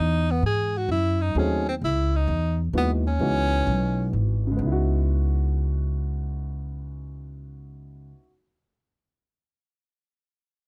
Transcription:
0.00 0.42 E2 medium
0.00 0.33 D#4 loud
0.31 0.45 B3 medium
0.43 0.88 G#2 medium
0.43 0.79 G#4 medium
0.77 0.91 F#4 medium
0.89 1.34 F#2 medium
0.89 1.23 E4 loud
1.21 1.36 D#4 medium
1.35 1.80 D#2 medium
1.35 1.64 F#3 medium
1.35 1.64 A3 medium
1.35 1.64 C4 medium
1.35 1.66 C#4 medium
1.35 1.65 D#4 medium
1.35 1.65 G#4 medium
1.69 1.75 C4 medium
1.81 2.27 C#2 medium
1.81 2.18 E4 medium
2.16 2.61 D#4 medium
2.27 2.73 E2 loud
2.73 3.19 D#2 loud
2.73 3.02 E3 medium
2.73 3.02 G#3 medium
2.73 3.03 B3 medium
2.73 3.03 D#4 medium
2.73 3.03 F#4 medium
2.78 2.91 B3 medium
3.07 4.10 C#4 loud
3.19 3.65 C#2 medium
3.19 4.50 E3 medium
3.19 4.50 G#3 medium
3.19 4.50 B3 medium
3.19 4.51 D#4 medium
3.19 4.51 F#4 medium
3.67 4.12 B1 medium
4.13 4.58 G#1 medium
4.47 8.04 C#3 medium
4.51 8.09 G#3 medium
4.57 8.12 C#2 medium
4.57 8.14 B3 medium
4.62 8.19 D#4 medium
4.67 8.24 E4 medium
4.72 8.29 F#4 medium

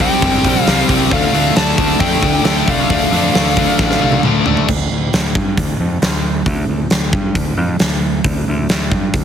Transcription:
0.00 0.22 C3 medium
0.00 0.23 G3 medium
0.00 0.23 C4 loud
0.00 0.62 G5 medium
0.00 kick medium
0.00 open hi-hat medium
0.22 0.38 G1 medium
0.22 0.44 C3 medium
0.22 0.44 G3 loud
0.22 0.45 C4 loud
0.22 kick loud
0.22 open hi-hat medium
0.45 0.60 A#1 medium
0.45 0.66 C3 loud
0.45 0.67 G3 loud
0.45 0.67 C4 loud
0.45 kick medium
0.45 open hi-hat medium
0.62 0.86 F5 medium
0.67 0.82 C2 loud
0.67 0.88 C3 medium
0.67 0.89 G3 medium
0.67 0.89 C4 medium
0.67 snare loud
0.67 open hi-hat medium
0.89 1.12 C2 loud
0.89 1.11 C3 medium
0.89 1.11 G3 medium
0.89 1.11 C4 medium
0.89 kick medium
0.89 open hi-hat medium
1.11 1.27 D2 loud
1.11 1.33 D3 loud
1.11 1.33 A3 loud
1.11 1.34 D4 loud
1.11 1.58 F5 medium
1.11 kick loud
1.11 open hi-hat medium
1.34 1.50 D2 medium
1.34 1.56 D3 medium
1.34 1.56 A3 loud
1.34 1.57 D4 loud
1.34 open hi-hat medium
1.56 1.72 D2 loud
1.56 1.78 D3 loud
1.56 1.78 A3 loud
1.56 1.79 D4 loud
1.56 2.00 A5 loud
1.56 snare loud
1.56 open hi-hat medium
1.78 1.94 D2 loud
1.78 2.00 D3 loud
1.78 2.01 A3 loud
1.78 2.02 D4 loud
1.78 kick medium
1.78 open hi-hat medium
2.00 2.16 F2 medium
2.00 2.21 D3 medium
2.00 2.22 A3 loud
2.00 2.23 D4 medium
2.00 2.42 G5 loud
2.00 kick loud
2.00 open hi-hat medium
2.22 2.38 D2 loud
2.22 2.43 D3 loud
2.22 2.44 A3 loud
2.22 2.45 D4 loud
2.22 kick medium
2.22 open hi-hat medium
2.44 2.61 D2 medium
2.44 2.66 D3 medium
2.44 2.67 A3 medium
2.44 2.67 D4 loud
2.44 2.67 G5 medium
2.44 snare loud
2.44 open hi-hat medium
2.67 2.83 C2 loud
2.67 2.89 D3 medium
2.67 2.89 A3 medium
2.67 2.90 D4 medium
2.67 4.21 F5 medium
2.67 kick medium
2.67 open hi-hat medium
2.90 3.05 D2 loud
2.90 3.10 D3 loud
2.90 3.11 A3 loud
2.90 3.11 D4 loud
2.90 kick loud
2.90 open hi-hat medium
3.12 3.28 F2 medium
3.12 3.33 D3 medium
3.12 3.33 A3 medium
3.12 3.34 D4 loud
3.12 open hi-hat medium
3.34 3.65 D2 medium
3.34 3.56 D3 loud
3.34 3.56 A3 loud
3.34 3.57 D4 loud
3.34 snare loud
3.34 open hi-hat medium
3.46 snare soft
3.56 3.78 D3 medium
3.56 3.78 A3 medium
3.56 3.79 D4 loud
3.56 kick medium
3.56 open hi-hat medium
3.79 3.94 A1 medium
3.79 4.00 D3 medium
3.79 4.00 A3 loud
3.79 4.01 D4 medium
3.79 kick loud
3.79 snare medium
3.91 snare medium
4.01 4.18 C2 medium
4.01 4.23 D3 loud
4.01 4.23 A3 loud
4.01 4.24 D4 loud
4.12 high tom medium
4.23 4.41 D2 medium
4.23 4.45 D3 medium
4.23 4.45 A3 loud
4.23 4.46 D4 medium
4.23 mid tom loud
4.46 4.62 D2 medium
4.46 4.67 D3 medium
4.46 4.67 A3 medium
4.46 4.68 D4 medium
4.46 floor tom medium
4.57 floor tom loud
4.68 4.89 D2 medium
4.68 kick medium
4.68 crash loud
4.91 5.12 D2 medium
5.13 5.34 D2 medium
5.13 snare loud
5.13 open hi-hat medium
5.35 5.56 G2 medium
5.35 kick medium
5.57 5.78 D2 medium
5.57 kick medium
5.57 open hi-hat soft
5.80 6.01 F2 medium
6.02 6.44 D2 medium
6.02 snare loud
6.02 open hi-hat medium
6.46 6.67 D2 medium
6.46 kick medium
6.46 open hi-hat soft
6.69 6.90 D2 medium
6.90 7.12 D2 medium
6.90 snare loud
6.90 open hi-hat medium
7.13 7.34 G2 medium
7.13 kick loud
7.35 7.56 D2 medium
7.35 kick medium
7.35 open hi-hat medium
7.57 7.79 F2 loud
7.79 8.22 D2 medium
7.79 snare loud
7.79 open hi-hat medium
8.24 8.46 D2 medium
8.24 kick loud
8.24 open hi-hat medium
8.48 8.69 D2 medium
8.69 8.91 D2 medium
8.69 snare loud
8.69 open hi-hat medium
8.91 9.13 G2 medium
8.91 kick medium
9.14 9.24 D2 medium
9.14 kick medium
9.14 open hi-hat soft

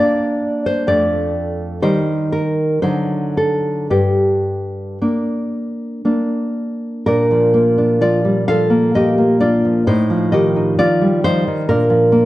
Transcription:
0.00 0.86 A#3 medium
0.00 0.86 D4 medium
0.00 0.64 D5 loud
0.66 0.90 C5 medium
0.87 1.80 F2 medium
0.87 1.79 A3 medium
0.87 1.80 D4 medium
0.87 1.79 D5 medium
1.82 2.79 D#3 medium
1.82 2.78 G3 medium
1.82 2.78 D#4 soft
1.82 2.30 C5 medium
2.32 2.81 A#4 medium
2.82 3.88 D3 medium
2.82 3.87 F#3 soft
2.82 3.87 D#4 soft
2.82 3.33 C5 medium
3.37 3.90 A4 medium
3.90 4.98 G2 medium
3.90 6.52 G4 medium
5.02 6.04 A#3 soft
5.02 6.04 D4 medium
6.05 7.03 A#3 soft
6.05 7.04 D4 soft
7.06 9.84 A#2 medium
7.06 7.77 D4 medium
7.06 7.99 A#4 medium
7.31 8.00 F3 soft
7.54 8.02 A#3 medium
7.78 8.49 D4 medium
8.01 8.47 F3 medium
8.01 8.24 F4 medium
8.01 8.47 D5 medium
8.25 9.41 G3 medium
8.48 8.93 F3 medium
8.48 8.93 A4 medium
8.48 8.94 F5 loud
8.70 9.17 A#3 medium
8.94 9.64 F3 medium
8.94 9.39 G4 medium
8.94 9.40 D#5 medium
9.18 9.88 A#3 medium
9.40 9.88 D4 medium
9.40 9.85 F4 medium
9.40 9.86 D5 medium
9.65 9.87 F3 soft
9.87 10.78 A2 medium
9.87 10.31 D#4 medium
9.87 10.32 C5 medium
10.10 10.77 F3 medium
10.32 11.46 D#3 medium
10.32 10.77 G4 medium
10.32 10.77 D#5 medium
10.56 11.24 D#4 medium
10.78 11.23 F3 medium
10.78 11.23 F4 medium
10.78 11.23 D5 loud
11.01 11.70 G3 medium
11.24 11.47 F3 medium
11.24 11.67 D#4 medium
11.24 11.68 C5 loud
11.47 11.70 D#3 medium
11.69 12.25 A#2 medium
11.69 12.25 D4 medium
11.69 12.25 A#4 medium
11.90 12.25 F3 medium
12.12 12.25 A#3 medium

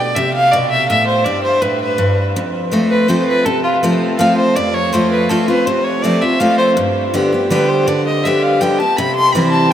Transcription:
0.00 0.14 B2 medium
0.00 0.17 D5 medium
0.15 0.86 C3 loud
0.15 0.33 E5 medium
0.33 0.54 F5 loud
0.52 0.88 B2 medium
0.52 0.70 D5 medium
0.70 0.88 E5 medium
0.88 1.24 A2 medium
0.88 1.06 E5 loud
1.06 1.26 C5 medium
1.25 1.95 G2 medium
1.25 1.43 D5 medium
1.44 1.63 C5 medium
1.62 1.97 A2 medium
1.62 1.80 B4 medium
1.81 2.23 B4 medium
1.98 2.33 G2 medium
2.36 3.06 F2 medium
2.72 3.07 F3 medium
2.72 3.07 A3 loud
2.72 3.08 C4 medium
2.72 3.08 F4 medium
2.90 3.10 B4 medium
3.08 3.44 F3 medium
3.08 3.44 A3 medium
3.08 3.44 C4 medium
3.08 3.44 F4 medium
3.08 3.27 C5 medium
3.28 3.47 B4 medium
3.46 4.16 C3 loud
3.46 3.63 A4 medium
3.63 3.75 F4 medium
3.83 4.18 F3 medium
3.83 4.18 A3 medium
3.83 4.18 C4 loud
3.83 4.18 F4 loud
4.18 4.54 F3 medium
4.18 4.54 A3 medium
4.18 4.55 C4 loud
4.18 4.55 F4 medium
4.18 4.36 F5 medium
4.37 4.58 C5 loud
4.56 5.26 F2 loud
4.56 4.76 D5 medium
4.74 4.95 C#5 loud
4.93 5.28 F3 medium
4.93 5.28 A3 medium
4.93 5.29 C4 medium
4.93 5.29 F4 medium
4.93 5.11 C5 medium
5.11 5.31 B4 medium
5.29 5.47 F3 medium
5.29 5.48 A3 medium
5.29 5.48 C4 medium
5.29 5.47 F4 loud
5.29 5.47 A4 medium
5.48 5.67 C4 medium
5.48 5.66 F4 medium
5.48 5.68 B4 loud
5.66 6.37 C3 medium
5.66 5.86 C5 medium
5.84 6.04 C#5 medium
6.03 6.21 F3 medium
6.03 6.22 A3 medium
6.03 6.22 C4 medium
6.03 6.21 F4 medium
6.03 6.23 D5 medium
6.22 6.40 C4 soft
6.22 6.39 F4 medium
6.22 6.41 E5 medium
6.40 6.75 F3 medium
6.40 6.75 A3 medium
6.40 6.76 C4 medium
6.40 6.76 F4 medium
6.40 6.57 F5 loud
6.58 6.69 C5 loud
6.77 7.47 G2 loud
7.14 7.32 D3 loud
7.14 7.32 G3 medium
7.14 7.32 B3 medium
7.14 7.31 G4 loud
7.32 7.50 B3 soft
7.32 7.50 G4 medium
7.50 7.86 D3 medium
7.50 7.86 G3 medium
7.50 7.86 B3 loud
7.50 7.86 G4 loud
7.50 7.70 B4 medium
7.69 7.89 C5 medium
7.87 8.24 D3 medium
7.87 8.06 D5 medium
8.06 8.25 D#5 medium
8.24 8.60 D3 medium
8.24 8.60 G3 medium
8.24 8.60 B3 medium
8.24 8.61 G4 medium
8.24 8.44 E5 medium
8.43 8.63 F5 medium
8.61 8.79 D3 medium
8.61 8.79 G3 medium
8.61 8.79 B3 medium
8.61 8.79 G4 loud
8.61 8.81 G5 medium
8.79 8.98 B3 soft
8.79 8.97 G4 medium
8.79 8.99 A5 medium
8.97 9.68 C3 loud
8.97 9.15 B5 medium
9.15 9.34 C6 loud
9.32 9.70 E3 medium
9.32 9.70 G3 medium
9.32 9.70 C4 medium
9.32 9.71 E4 medium
9.32 9.51 B5 loud
9.51 9.72 A5 medium

